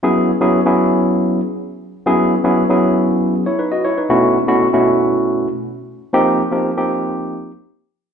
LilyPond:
\new Staff \with { instrumentName = "Tine electric piano" } { \time 4/4 \key fis \dorian \tempo 4 = 118 << { r1 | r2 r8. <e' cis''>16 <dis' b'>16 <fis' dis''>16 <e' cis''>16 <dis' b'>16~ | <dis' b'>16 r2. r8. | r1 | } \\ { <fis b cis' e' gis'>8 r16 <fis b cis' e' gis'>16 r16 <fis b cis' e' gis'>4. r4 r16 | <fis b cis' e' gis'>8 r16 <fis b cis' e' gis'>16 r16 <fis b cis' e' gis'>4. r4 r16 | <b, a cis' e' fis'>8 r16 <b, a cis' e' fis'>16 r16 <b, a cis' e' fis'>4. r4 r16 | <f bes c' ees' g'>8 r16 <f bes c' ees' g'>16 r16 <f bes c' ees' g'>4. r4 r16 | } >> }